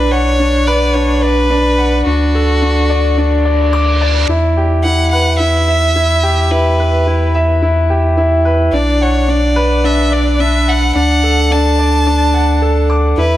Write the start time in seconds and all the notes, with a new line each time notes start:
Already playing: B1 D4 B4
0.12 C#5 F#5
0.40 D4
0.67 B4 D5
0.94 D4 C#5
1.22 B4 D5
1.50 D4
1.78 F#5
2.06 D2 D4 F#4
2.35 A4
2.62 D4
2.90 D5
3.17 D4, reverse cymbal
3.45 D5
3.73 D6
4.01 D5
4.28 E2 E4
4.57 G4
4.84 E4 F#5
5.11 B4 F#5
5.39 E4 E5
5.68 E5
5.96 E4
6.23 G4
6.51 E4 B4
6.80 B4
7.07 E4
7.35 E5
7.62 E4
7.90 G4
8.17 E4
8.45 B4
8.72 B1 D4 D5
9.01 C#5 F#5
9.28 D4 D5
9.56 B4
9.84 D4 E5
10.12 D5
10.40 D4 E5
10.68 F#5
10.95 D2 D4 F#5
11.23 A4
11.51 D4 A5
11.79 D5
12.07 D4
12.34 F#5
12.62 A4
12.90 D6
13.17 E2 E4 B4